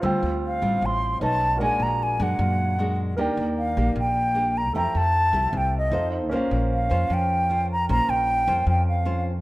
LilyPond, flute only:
\new Staff \with { instrumentName = "Flute" } { \time 4/4 \key bes \lydian \tempo 4 = 153 r4 f''4 c'''4 a''4 | aes''8 bes''8 aes''8 fis''2 r8 | r4 f''4 g''4. bes''8 | bes''8 a''4. g''8 ees''4 r8 |
r4 f''4 g''4. bes''8 | bes''8 g''4. g''8 f''4 r8 | }